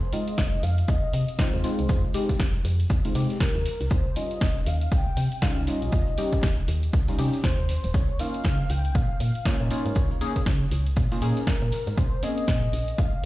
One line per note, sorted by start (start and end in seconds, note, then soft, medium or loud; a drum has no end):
0.00 0.14 C5 loud
0.12 1.36 G#3 medium
0.12 1.36 C4 medium
0.12 1.36 D#4 medium
0.12 1.36 F4 medium
0.12 0.62 D#5 loud
0.12 closed hi-hat medium
0.12 open hi-hat loud
0.12 shaker medium
0.27 closed hi-hat medium
0.27 shaker soft
0.37 0.58 F1 medium
0.37 kick loud
0.37 snare loud
0.37 closed hi-hat medium
0.37 shaker medium
0.53 snare soft
0.63 0.83 F2 medium
0.63 0.90 F5 loud
0.63 closed hi-hat medium
0.63 open hi-hat loud
0.63 shaker medium
0.78 closed hi-hat medium
0.78 shaker soft
0.88 0.99 D#2 medium
0.88 1.40 D#5 loud
0.88 kick loud
0.88 closed hi-hat medium
0.88 shaker medium
1.13 1.25 C3 medium
1.13 closed hi-hat medium
1.13 open hi-hat loud
1.13 shaker loud
1.28 closed hi-hat medium
1.28 shaker soft
1.38 1.61 G#3 loud
1.38 1.61 C4 medium
1.38 1.61 D#4 medium
1.38 1.61 F4 loud
1.38 1.63 C5 loud
1.38 kick loud
1.38 snare loud
1.38 closed hi-hat medium
1.38 closed hi-hat loud
1.38 shaker medium
1.54 1.61 D#2 medium
1.63 2.12 G#3 loud
1.63 2.12 C4 medium
1.63 2.12 D#4 medium
1.63 2.12 F4 loud
1.63 2.61 C5 loud
1.63 closed hi-hat medium
1.63 open hi-hat loud
1.63 shaker medium
1.79 1.87 C2 medium
1.79 closed hi-hat medium
1.79 shaker soft
1.89 2.00 F2 loud
1.89 kick loud
1.89 closed hi-hat medium
1.89 shaker medium
2.04 closed hi-hat soft
2.14 2.33 G#3 loud
2.14 2.33 C4 medium
2.14 2.33 D#4 medium
2.14 2.33 G4 loud
2.14 closed hi-hat medium
2.14 open hi-hat loud
2.14 shaker medium
2.29 kick medium
2.29 snare soft
2.29 closed hi-hat medium
2.29 shaker soft
2.40 2.60 F1 medium
2.40 kick loud
2.40 snare loud
2.40 closed hi-hat medium
2.40 shaker medium
2.64 2.85 F2 medium
2.64 closed hi-hat medium
2.64 open hi-hat loud
2.64 shaker loud
2.80 closed hi-hat medium
2.80 shaker soft
2.89 3.01 D#2 medium
2.89 kick loud
2.89 closed hi-hat medium
2.89 shaker medium
3.05 3.13 G#3 medium
3.05 3.13 C4 medium
3.05 3.13 D#4 medium
3.05 3.13 F4 medium
3.05 snare soft
3.05 open hi-hat medium
3.14 3.26 C3 medium
3.14 3.34 G#3 medium
3.14 3.34 C4 medium
3.14 3.34 D#4 medium
3.14 3.34 G4 loud
3.14 open hi-hat medium
3.14 open hi-hat loud
3.14 shaker loud
3.30 snare soft
3.30 closed hi-hat medium
3.30 shaker soft
3.40 3.92 A#4 medium
3.40 kick loud
3.40 snare loud
3.40 closed hi-hat medium
3.40 shaker medium
3.55 3.63 D#2 loud
3.65 snare medium
3.65 closed hi-hat medium
3.65 open hi-hat loud
3.65 shaker loud
3.80 3.88 C2 medium
3.80 snare soft
3.80 closed hi-hat medium
3.80 shaker soft
3.90 4.02 D#2 loud
3.90 4.18 C5 medium
3.90 kick loud
3.90 closed hi-hat medium
3.90 shaker medium
4.16 5.40 G3 medium
4.16 5.40 C#4 medium
4.16 5.40 D#4 medium
4.16 5.40 F4 medium
4.16 4.68 D#5 loud
4.16 closed hi-hat medium
4.16 open hi-hat loud
4.16 shaker medium
4.31 closed hi-hat medium
4.31 shaker soft
4.41 4.61 D#1 medium
4.41 kick loud
4.41 snare loud
4.41 closed hi-hat loud
4.41 closed hi-hat medium
4.41 shaker medium
4.56 snare soft
4.66 4.87 D#2 medium
4.66 4.93 F5 loud
4.66 closed hi-hat medium
4.66 open hi-hat loud
4.66 shaker loud
4.81 closed hi-hat medium
4.81 shaker soft
4.92 5.03 C#2 medium
4.92 5.44 G5 loud
4.92 kick loud
4.92 closed hi-hat medium
4.92 shaker medium
5.16 5.28 C3 medium
5.16 closed hi-hat medium
5.16 open hi-hat loud
5.16 shaker loud
5.32 closed hi-hat medium
5.32 shaker soft
5.42 5.65 G3 loud
5.42 5.65 C#4 medium
5.42 5.65 D#4 medium
5.42 5.65 F4 loud
5.42 5.69 F5 loud
5.42 kick loud
5.42 snare loud
5.42 closed hi-hat medium
5.42 shaker soft
5.57 5.65 C#2 medium
5.67 6.15 G3 loud
5.67 6.15 C#4 medium
5.67 6.15 D#4 medium
5.67 6.15 F4 loud
5.67 6.68 D#5 loud
5.67 closed hi-hat medium
5.67 open hi-hat loud
5.67 shaker loud
5.82 5.90 A#1 medium
5.82 closed hi-hat medium
5.82 shaker soft
5.92 6.04 D#2 loud
5.92 kick loud
5.92 closed hi-hat medium
5.92 shaker medium
6.07 closed hi-hat soft
6.18 6.36 G3 loud
6.18 6.36 C#4 medium
6.18 6.36 D#4 medium
6.18 6.36 G4 loud
6.18 closed hi-hat medium
6.18 open hi-hat loud
6.18 shaker loud
6.33 kick medium
6.33 snare soft
6.33 closed hi-hat medium
6.33 shaker soft
6.42 6.63 D#1 medium
6.42 kick loud
6.42 snare loud
6.42 closed hi-hat medium
6.42 shaker medium
6.68 6.88 D#2 medium
6.68 closed hi-hat medium
6.68 open hi-hat loud
6.68 shaker medium
6.83 closed hi-hat medium
6.83 shaker soft
6.93 7.05 C#2 medium
6.93 kick loud
6.93 closed hi-hat medium
6.93 shaker medium
7.08 7.16 G3 medium
7.08 7.16 C#4 medium
7.08 7.16 D#4 medium
7.08 7.16 F4 medium
7.08 snare soft
7.08 open hi-hat medium
7.18 7.30 C3 medium
7.18 7.37 G3 medium
7.18 7.37 C#4 medium
7.18 7.37 D#4 medium
7.18 7.37 G4 loud
7.18 open hi-hat loud
7.18 open hi-hat medium
7.18 shaker loud
7.33 snare soft
7.33 closed hi-hat medium
7.33 shaker soft
7.44 7.78 D#2 medium
7.44 7.96 C5 loud
7.44 kick loud
7.44 snare loud
7.44 closed hi-hat medium
7.44 shaker medium
7.69 snare medium
7.69 closed hi-hat medium
7.69 open hi-hat loud
7.69 shaker medium
7.83 7.92 D#1 loud
7.83 snare medium
7.83 closed hi-hat medium
7.83 shaker soft
7.94 8.05 C#2 loud
7.94 8.21 C#5 loud
7.94 kick loud
7.94 closed hi-hat medium
7.94 shaker medium
8.19 9.43 A#3 medium
8.19 9.43 C#4 medium
8.19 9.43 D#4 medium
8.19 9.43 F4 medium
8.19 8.71 F5 loud
8.19 closed hi-hat medium
8.19 open hi-hat loud
8.19 shaker medium
8.34 closed hi-hat medium
8.34 shaker soft
8.44 8.65 C#3 medium
8.44 kick loud
8.44 snare loud
8.44 closed hi-hat medium
8.44 shaker medium
8.60 snare soft
8.69 8.90 C#2 medium
8.69 8.97 G5 loud
8.69 closed hi-hat medium
8.69 open hi-hat loud
8.69 shaker medium
8.85 closed hi-hat medium
8.85 shaker soft
8.95 9.06 A#2 medium
8.95 9.47 F5 loud
8.95 kick loud
8.95 closed hi-hat medium
8.95 shaker soft
9.20 9.31 A#2 medium
9.20 closed hi-hat medium
9.20 open hi-hat loud
9.20 shaker medium
9.35 closed hi-hat medium
9.35 shaker soft
9.45 9.68 A#3 loud
9.45 9.68 C#4 medium
9.45 9.68 D#4 medium
9.45 9.68 F4 loud
9.45 9.70 C#5 loud
9.45 kick loud
9.45 snare loud
9.45 closed hi-hat medium
9.45 shaker medium
9.60 9.68 A#2 medium
9.71 10.19 A#3 loud
9.71 10.19 C#4 medium
9.71 10.19 D#4 medium
9.71 10.19 F4 loud
9.71 10.68 C#5 medium
9.71 closed hi-hat medium
9.71 open hi-hat loud
9.71 shaker medium
9.86 9.93 G#2 medium
9.86 closed hi-hat medium
9.86 shaker soft
9.95 10.07 C#2 loud
9.95 kick loud
9.95 closed hi-hat medium
9.95 shaker soft
10.11 closed hi-hat soft
10.21 10.39 A#3 loud
10.21 10.39 C#4 medium
10.21 10.39 D#4 medium
10.21 10.39 G#4 loud
10.21 closed hi-hat medium
10.21 open hi-hat loud
10.21 shaker medium
10.35 kick medium
10.35 snare medium
10.35 closed hi-hat medium
10.35 shaker soft
10.46 10.66 C#3 medium
10.46 kick loud
10.46 snare loud
10.46 closed hi-hat medium
10.46 shaker medium
10.71 10.92 C#2 medium
10.71 closed hi-hat medium
10.71 open hi-hat loud
10.71 shaker medium
10.86 closed hi-hat medium
10.86 shaker soft
10.96 11.08 A#2 medium
10.96 kick loud
10.96 closed hi-hat medium
10.96 shaker medium
11.12 11.19 A#3 medium
11.12 11.19 C#4 medium
11.12 11.19 D#4 medium
11.12 11.19 F4 medium
11.12 snare soft
11.12 open hi-hat medium
11.21 11.33 A#2 medium
11.21 11.40 A#3 medium
11.21 11.40 C#4 medium
11.21 11.40 D#4 medium
11.21 11.40 G#4 loud
11.21 open hi-hat medium
11.21 open hi-hat loud
11.21 shaker medium
11.37 snare soft
11.37 closed hi-hat medium
11.37 shaker soft
11.47 11.99 A#4 medium
11.47 kick loud
11.47 snare loud
11.47 closed hi-hat loud
11.47 closed hi-hat medium
11.47 shaker medium
11.62 11.70 A#2 medium
11.72 snare medium
11.72 closed hi-hat medium
11.72 open hi-hat loud
11.72 shaker medium
11.87 11.95 G#2 medium
11.87 snare medium
11.87 closed hi-hat medium
11.87 shaker soft
11.97 12.09 A#1 loud
11.97 12.24 C5 loud
11.97 kick loud
11.97 closed hi-hat medium
11.97 shaker medium
12.23 13.25 A#3 medium
12.23 13.25 C4 medium
12.23 13.25 C#4 medium
12.23 13.25 G#4 medium
12.23 13.00 D#5 loud
12.23 closed hi-hat medium
12.23 open hi-hat loud
12.23 shaker medium
12.38 closed hi-hat medium
12.38 shaker soft
12.47 12.68 A#2 medium
12.47 kick loud
12.47 snare loud
12.47 closed hi-hat medium
12.47 shaker soft
12.62 snare soft
12.73 12.93 A#1 medium
12.73 closed hi-hat medium
12.73 open hi-hat loud
12.73 shaker medium
12.88 closed hi-hat medium
12.88 shaker soft
12.98 13.10 G#2 medium
12.98 13.25 F5 loud
12.98 kick loud
12.98 closed hi-hat medium
12.98 shaker medium